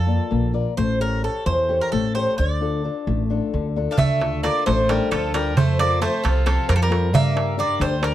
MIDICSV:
0, 0, Header, 1, 6, 480
1, 0, Start_track
1, 0, Key_signature, -1, "minor"
1, 0, Tempo, 459067
1, 810, Time_signature, 7, 3, 24, 8
1, 4643, Tempo, 448766
1, 8604, End_track
2, 0, Start_track
2, 0, Title_t, "Bouzouki"
2, 0, Program_c, 0, 25
2, 0, Note_on_c, 0, 69, 83
2, 532, Note_off_c, 0, 69, 0
2, 808, Note_on_c, 0, 72, 89
2, 1034, Note_off_c, 0, 72, 0
2, 1057, Note_on_c, 0, 70, 83
2, 1279, Note_off_c, 0, 70, 0
2, 1298, Note_on_c, 0, 69, 71
2, 1520, Note_off_c, 0, 69, 0
2, 1528, Note_on_c, 0, 72, 85
2, 1867, Note_off_c, 0, 72, 0
2, 1897, Note_on_c, 0, 70, 84
2, 2002, Note_off_c, 0, 70, 0
2, 2006, Note_on_c, 0, 69, 82
2, 2234, Note_off_c, 0, 69, 0
2, 2246, Note_on_c, 0, 72, 88
2, 2474, Note_off_c, 0, 72, 0
2, 2487, Note_on_c, 0, 74, 91
2, 3883, Note_off_c, 0, 74, 0
2, 4100, Note_on_c, 0, 77, 61
2, 4162, Note_off_c, 0, 77, 0
2, 4166, Note_on_c, 0, 76, 97
2, 4608, Note_off_c, 0, 76, 0
2, 4638, Note_on_c, 0, 74, 87
2, 4876, Note_off_c, 0, 74, 0
2, 4880, Note_on_c, 0, 72, 89
2, 5107, Note_off_c, 0, 72, 0
2, 5126, Note_on_c, 0, 70, 73
2, 5351, Note_off_c, 0, 70, 0
2, 5365, Note_on_c, 0, 69, 89
2, 5591, Note_off_c, 0, 69, 0
2, 5606, Note_on_c, 0, 70, 91
2, 5832, Note_off_c, 0, 70, 0
2, 5850, Note_on_c, 0, 72, 94
2, 6074, Note_off_c, 0, 72, 0
2, 6091, Note_on_c, 0, 74, 103
2, 6324, Note_off_c, 0, 74, 0
2, 6328, Note_on_c, 0, 72, 87
2, 6554, Note_off_c, 0, 72, 0
2, 6563, Note_on_c, 0, 69, 76
2, 6791, Note_off_c, 0, 69, 0
2, 6803, Note_on_c, 0, 69, 80
2, 7031, Note_off_c, 0, 69, 0
2, 7049, Note_on_c, 0, 70, 92
2, 7115, Note_off_c, 0, 70, 0
2, 7121, Note_on_c, 0, 69, 83
2, 7190, Note_off_c, 0, 69, 0
2, 7195, Note_on_c, 0, 70, 86
2, 7510, Note_off_c, 0, 70, 0
2, 7539, Note_on_c, 0, 76, 107
2, 7979, Note_off_c, 0, 76, 0
2, 8020, Note_on_c, 0, 74, 93
2, 8236, Note_off_c, 0, 74, 0
2, 8255, Note_on_c, 0, 72, 89
2, 8472, Note_off_c, 0, 72, 0
2, 8492, Note_on_c, 0, 70, 82
2, 8604, Note_off_c, 0, 70, 0
2, 8604, End_track
3, 0, Start_track
3, 0, Title_t, "Steel-string acoustic guitar"
3, 0, Program_c, 1, 25
3, 0, Note_on_c, 1, 53, 60
3, 69, Note_on_c, 1, 65, 46
3, 74, Note_on_c, 1, 58, 40
3, 80, Note_on_c, 1, 74, 49
3, 306, Note_off_c, 1, 53, 0
3, 309, Note_off_c, 1, 58, 0
3, 321, Note_on_c, 1, 58, 62
3, 463, Note_off_c, 1, 65, 0
3, 469, Note_off_c, 1, 74, 0
3, 560, Note_on_c, 1, 65, 53
3, 566, Note_on_c, 1, 70, 47
3, 567, Note_on_c, 1, 74, 62
3, 757, Note_off_c, 1, 65, 0
3, 759, Note_off_c, 1, 70, 0
3, 761, Note_off_c, 1, 74, 0
3, 793, Note_off_c, 1, 58, 0
3, 807, Note_on_c, 1, 57, 62
3, 1047, Note_on_c, 1, 67, 41
3, 1052, Note_on_c, 1, 69, 38
3, 1057, Note_on_c, 1, 73, 49
3, 1275, Note_off_c, 1, 67, 0
3, 1277, Note_off_c, 1, 57, 0
3, 1278, Note_off_c, 1, 69, 0
3, 1286, Note_off_c, 1, 73, 0
3, 1287, Note_on_c, 1, 67, 43
3, 1295, Note_on_c, 1, 69, 36
3, 1299, Note_on_c, 1, 73, 45
3, 1529, Note_on_c, 1, 52, 61
3, 1676, Note_off_c, 1, 67, 0
3, 1677, Note_off_c, 1, 69, 0
3, 1682, Note_off_c, 1, 73, 0
3, 1766, Note_on_c, 1, 67, 50
3, 1774, Note_on_c, 1, 69, 41
3, 1780, Note_on_c, 1, 73, 52
3, 1998, Note_off_c, 1, 52, 0
3, 2010, Note_on_c, 1, 57, 64
3, 2154, Note_off_c, 1, 67, 0
3, 2159, Note_off_c, 1, 69, 0
3, 2162, Note_off_c, 1, 73, 0
3, 2252, Note_on_c, 1, 67, 54
3, 2257, Note_on_c, 1, 69, 52
3, 2267, Note_on_c, 1, 73, 53
3, 2446, Note_off_c, 1, 67, 0
3, 2448, Note_off_c, 1, 69, 0
3, 2454, Note_off_c, 1, 73, 0
3, 2479, Note_off_c, 1, 57, 0
3, 2500, Note_on_c, 1, 50, 70
3, 2726, Note_on_c, 1, 62, 43
3, 2732, Note_on_c, 1, 65, 38
3, 2738, Note_on_c, 1, 69, 46
3, 2960, Note_off_c, 1, 62, 0
3, 2962, Note_off_c, 1, 50, 0
3, 2964, Note_off_c, 1, 65, 0
3, 2969, Note_off_c, 1, 69, 0
3, 2972, Note_on_c, 1, 62, 41
3, 2978, Note_on_c, 1, 65, 41
3, 2982, Note_on_c, 1, 69, 49
3, 3212, Note_on_c, 1, 57, 59
3, 3355, Note_off_c, 1, 62, 0
3, 3358, Note_off_c, 1, 65, 0
3, 3361, Note_off_c, 1, 69, 0
3, 3450, Note_on_c, 1, 62, 46
3, 3454, Note_on_c, 1, 65, 40
3, 3460, Note_on_c, 1, 69, 52
3, 3676, Note_off_c, 1, 57, 0
3, 3696, Note_on_c, 1, 50, 62
3, 3832, Note_off_c, 1, 62, 0
3, 3835, Note_off_c, 1, 65, 0
3, 3838, Note_off_c, 1, 69, 0
3, 3936, Note_on_c, 1, 62, 50
3, 3939, Note_on_c, 1, 65, 47
3, 3945, Note_on_c, 1, 69, 58
3, 4124, Note_off_c, 1, 62, 0
3, 4124, Note_off_c, 1, 65, 0
3, 4129, Note_off_c, 1, 69, 0
3, 4155, Note_off_c, 1, 50, 0
3, 4176, Note_on_c, 1, 50, 71
3, 4408, Note_on_c, 1, 62, 47
3, 4417, Note_on_c, 1, 65, 40
3, 4423, Note_on_c, 1, 69, 50
3, 4625, Note_off_c, 1, 62, 0
3, 4628, Note_off_c, 1, 65, 0
3, 4632, Note_off_c, 1, 50, 0
3, 4634, Note_off_c, 1, 69, 0
3, 4636, Note_on_c, 1, 62, 49
3, 4642, Note_on_c, 1, 65, 42
3, 4646, Note_on_c, 1, 69, 48
3, 4884, Note_on_c, 1, 57, 64
3, 5027, Note_off_c, 1, 62, 0
3, 5029, Note_off_c, 1, 65, 0
3, 5032, Note_off_c, 1, 69, 0
3, 5122, Note_on_c, 1, 62, 44
3, 5126, Note_on_c, 1, 65, 41
3, 5134, Note_on_c, 1, 69, 57
3, 5353, Note_off_c, 1, 57, 0
3, 5363, Note_on_c, 1, 50, 60
3, 5510, Note_off_c, 1, 62, 0
3, 5513, Note_off_c, 1, 65, 0
3, 5515, Note_off_c, 1, 69, 0
3, 5604, Note_on_c, 1, 62, 58
3, 5610, Note_on_c, 1, 65, 49
3, 5617, Note_on_c, 1, 69, 58
3, 5799, Note_off_c, 1, 62, 0
3, 5803, Note_off_c, 1, 65, 0
3, 5807, Note_off_c, 1, 69, 0
3, 5834, Note_off_c, 1, 50, 0
3, 5855, Note_on_c, 1, 53, 69
3, 6093, Note_on_c, 1, 60, 44
3, 6098, Note_on_c, 1, 65, 41
3, 6103, Note_on_c, 1, 69, 49
3, 6308, Note_off_c, 1, 60, 0
3, 6314, Note_off_c, 1, 65, 0
3, 6319, Note_off_c, 1, 69, 0
3, 6321, Note_off_c, 1, 53, 0
3, 6321, Note_on_c, 1, 60, 47
3, 6326, Note_on_c, 1, 65, 42
3, 6334, Note_on_c, 1, 69, 49
3, 6577, Note_on_c, 1, 48, 64
3, 6710, Note_off_c, 1, 60, 0
3, 6714, Note_off_c, 1, 65, 0
3, 6716, Note_off_c, 1, 69, 0
3, 6803, Note_on_c, 1, 60, 46
3, 6809, Note_on_c, 1, 65, 42
3, 6813, Note_on_c, 1, 69, 57
3, 7041, Note_off_c, 1, 48, 0
3, 7042, Note_on_c, 1, 53, 65
3, 7191, Note_off_c, 1, 60, 0
3, 7194, Note_off_c, 1, 69, 0
3, 7195, Note_off_c, 1, 65, 0
3, 7272, Note_on_c, 1, 60, 57
3, 7281, Note_on_c, 1, 65, 51
3, 7283, Note_on_c, 1, 69, 64
3, 7472, Note_off_c, 1, 60, 0
3, 7475, Note_off_c, 1, 65, 0
3, 7478, Note_off_c, 1, 69, 0
3, 7511, Note_off_c, 1, 53, 0
3, 7521, Note_on_c, 1, 55, 73
3, 7756, Note_on_c, 1, 62, 45
3, 7764, Note_on_c, 1, 67, 38
3, 7767, Note_on_c, 1, 70, 48
3, 7982, Note_off_c, 1, 62, 0
3, 7987, Note_off_c, 1, 70, 0
3, 7988, Note_off_c, 1, 67, 0
3, 7989, Note_off_c, 1, 55, 0
3, 7995, Note_on_c, 1, 62, 45
3, 7999, Note_on_c, 1, 67, 45
3, 8002, Note_on_c, 1, 70, 52
3, 8242, Note_on_c, 1, 50, 68
3, 8381, Note_off_c, 1, 62, 0
3, 8384, Note_off_c, 1, 67, 0
3, 8384, Note_off_c, 1, 70, 0
3, 8468, Note_on_c, 1, 62, 48
3, 8475, Note_on_c, 1, 67, 49
3, 8477, Note_on_c, 1, 70, 53
3, 8604, Note_off_c, 1, 50, 0
3, 8604, Note_off_c, 1, 62, 0
3, 8604, Note_off_c, 1, 67, 0
3, 8604, Note_off_c, 1, 70, 0
3, 8604, End_track
4, 0, Start_track
4, 0, Title_t, "Bouzouki"
4, 0, Program_c, 2, 25
4, 4088, Note_on_c, 2, 62, 60
4, 4156, Note_on_c, 2, 57, 75
4, 4157, Note_off_c, 2, 62, 0
4, 4603, Note_off_c, 2, 57, 0
4, 4635, Note_on_c, 2, 58, 70
4, 4864, Note_off_c, 2, 58, 0
4, 4879, Note_on_c, 2, 57, 72
4, 5107, Note_off_c, 2, 57, 0
4, 5127, Note_on_c, 2, 55, 72
4, 5352, Note_off_c, 2, 55, 0
4, 5362, Note_on_c, 2, 53, 73
4, 5590, Note_off_c, 2, 53, 0
4, 5614, Note_on_c, 2, 55, 62
4, 5836, Note_off_c, 2, 55, 0
4, 5863, Note_on_c, 2, 57, 80
4, 6081, Note_off_c, 2, 57, 0
4, 6100, Note_on_c, 2, 58, 79
4, 6320, Note_off_c, 2, 58, 0
4, 6334, Note_on_c, 2, 57, 85
4, 6557, Note_off_c, 2, 57, 0
4, 6574, Note_on_c, 2, 53, 77
4, 6793, Note_off_c, 2, 53, 0
4, 6806, Note_on_c, 2, 53, 71
4, 7032, Note_off_c, 2, 53, 0
4, 7060, Note_on_c, 2, 53, 72
4, 7106, Note_off_c, 2, 53, 0
4, 7119, Note_on_c, 2, 53, 60
4, 7184, Note_off_c, 2, 53, 0
4, 7189, Note_on_c, 2, 55, 66
4, 7507, Note_off_c, 2, 55, 0
4, 7529, Note_on_c, 2, 58, 86
4, 7974, Note_off_c, 2, 58, 0
4, 8010, Note_on_c, 2, 58, 72
4, 8231, Note_off_c, 2, 58, 0
4, 8257, Note_on_c, 2, 55, 63
4, 8473, Note_off_c, 2, 55, 0
4, 8494, Note_on_c, 2, 55, 67
4, 8604, Note_off_c, 2, 55, 0
4, 8604, End_track
5, 0, Start_track
5, 0, Title_t, "Upright bass"
5, 0, Program_c, 3, 32
5, 0, Note_on_c, 3, 41, 88
5, 178, Note_off_c, 3, 41, 0
5, 331, Note_on_c, 3, 34, 81
5, 668, Note_off_c, 3, 34, 0
5, 811, Note_on_c, 3, 33, 86
5, 1317, Note_off_c, 3, 33, 0
5, 1530, Note_on_c, 3, 40, 92
5, 1868, Note_off_c, 3, 40, 0
5, 2014, Note_on_c, 3, 33, 80
5, 2351, Note_off_c, 3, 33, 0
5, 2498, Note_on_c, 3, 38, 87
5, 3000, Note_off_c, 3, 38, 0
5, 3212, Note_on_c, 3, 33, 92
5, 3547, Note_off_c, 3, 33, 0
5, 3698, Note_on_c, 3, 38, 84
5, 4029, Note_off_c, 3, 38, 0
5, 4173, Note_on_c, 3, 38, 81
5, 4670, Note_off_c, 3, 38, 0
5, 4894, Note_on_c, 3, 33, 84
5, 5229, Note_off_c, 3, 33, 0
5, 5369, Note_on_c, 3, 38, 76
5, 5853, Note_off_c, 3, 38, 0
5, 5853, Note_on_c, 3, 41, 94
5, 6358, Note_off_c, 3, 41, 0
5, 6576, Note_on_c, 3, 36, 85
5, 6911, Note_off_c, 3, 36, 0
5, 7050, Note_on_c, 3, 41, 89
5, 7525, Note_off_c, 3, 41, 0
5, 7525, Note_on_c, 3, 43, 82
5, 8028, Note_off_c, 3, 43, 0
5, 8236, Note_on_c, 3, 38, 85
5, 8572, Note_off_c, 3, 38, 0
5, 8604, End_track
6, 0, Start_track
6, 0, Title_t, "Darbuka"
6, 4160, Note_on_c, 9, 64, 73
6, 4264, Note_off_c, 9, 64, 0
6, 4282, Note_on_c, 9, 63, 20
6, 4387, Note_off_c, 9, 63, 0
6, 4406, Note_on_c, 9, 63, 61
6, 4511, Note_off_c, 9, 63, 0
6, 4643, Note_on_c, 9, 63, 66
6, 4750, Note_off_c, 9, 63, 0
6, 4888, Note_on_c, 9, 63, 72
6, 4995, Note_off_c, 9, 63, 0
6, 5127, Note_on_c, 9, 63, 77
6, 5234, Note_off_c, 9, 63, 0
6, 5368, Note_on_c, 9, 63, 73
6, 5475, Note_off_c, 9, 63, 0
6, 5608, Note_on_c, 9, 63, 73
6, 5715, Note_off_c, 9, 63, 0
6, 5855, Note_on_c, 9, 64, 90
6, 5961, Note_off_c, 9, 64, 0
6, 5972, Note_on_c, 9, 63, 25
6, 6079, Note_off_c, 9, 63, 0
6, 6090, Note_on_c, 9, 63, 77
6, 6197, Note_off_c, 9, 63, 0
6, 6331, Note_on_c, 9, 63, 78
6, 6438, Note_off_c, 9, 63, 0
6, 6576, Note_on_c, 9, 63, 82
6, 6683, Note_off_c, 9, 63, 0
6, 6811, Note_on_c, 9, 63, 81
6, 6918, Note_off_c, 9, 63, 0
6, 7050, Note_on_c, 9, 63, 78
6, 7157, Note_off_c, 9, 63, 0
6, 7294, Note_on_c, 9, 63, 68
6, 7401, Note_off_c, 9, 63, 0
6, 7536, Note_on_c, 9, 64, 102
6, 7643, Note_off_c, 9, 64, 0
6, 7774, Note_on_c, 9, 63, 78
6, 7881, Note_off_c, 9, 63, 0
6, 8250, Note_on_c, 9, 63, 78
6, 8357, Note_off_c, 9, 63, 0
6, 8480, Note_on_c, 9, 63, 85
6, 8587, Note_off_c, 9, 63, 0
6, 8604, End_track
0, 0, End_of_file